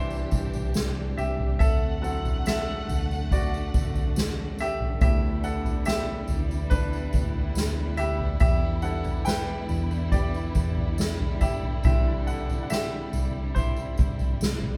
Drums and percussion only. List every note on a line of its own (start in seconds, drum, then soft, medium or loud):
0.10 tambourine soft
0.31 kick loud
0.31 tambourine medium
0.53 floor tom medium
0.53 tambourine soft
0.74 snare medium
0.74 tambourine medium
1.18 tambourine medium
1.39 floor tom medium
1.60 kick loud
1.60 floor tom loud
1.60 tambourine soft
2.04 tambourine soft
2.25 floor tom medium
2.25 tambourine soft
2.46 snare loud
2.46 tambourine medium
2.89 floor tom medium
2.89 tambourine medium
3.11 tambourine soft
3.31 kick medium
3.31 floor tom medium
3.31 tambourine medium
3.54 tambourine soft
3.74 kick loud
3.74 tambourine medium
3.95 floor tom medium
3.95 tambourine soft
4.16 snare loud
4.16 tambourine medium
4.59 tambourine medium
4.80 floor tom medium
5.01 kick loud
5.01 floor tom loud
5.01 tambourine soft
5.44 tambourine soft
5.65 floor tom medium
5.65 tambourine soft
5.85 snare loud
5.85 tambourine medium
6.28 floor tom medium
6.28 tambourine medium
6.51 tambourine soft
6.71 kick medium
6.71 floor tom medium
6.71 tambourine medium
6.93 tambourine soft
7.13 kick loud
7.13 tambourine medium
7.34 floor tom medium
7.55 snare loud
7.55 tambourine medium
7.97 tambourine soft
8.20 floor tom medium
8.40 kick loud
8.40 floor tom loud
8.40 tambourine soft
8.82 tambourine soft
9.04 floor tom medium
9.04 tambourine soft
9.26 snare loud
9.26 tambourine medium
9.69 floor tom medium
9.69 tambourine soft
9.91 tambourine soft
10.12 kick medium
10.12 floor tom medium
10.12 tambourine soft
10.34 tambourine soft
10.55 kick loud
10.55 tambourine medium
10.77 floor tom medium
10.98 snare loud
10.98 tambourine medium
11.20 floor tom medium
11.41 kick medium
11.41 tambourine soft
11.63 floor tom medium
11.83 kick loud
11.83 floor tom loud
11.83 tambourine soft
12.27 tambourine soft
12.49 floor tom medium
12.49 tambourine soft
12.70 snare loud
12.70 tambourine medium
13.13 floor tom medium
13.13 tambourine soft
13.56 kick medium
13.56 floor tom medium
13.56 tambourine soft
13.76 tambourine soft
13.97 kick loud
13.97 tambourine soft
14.19 floor tom medium
14.19 tambourine soft
14.41 snare loud
14.41 tambourine medium
14.62 floor tom medium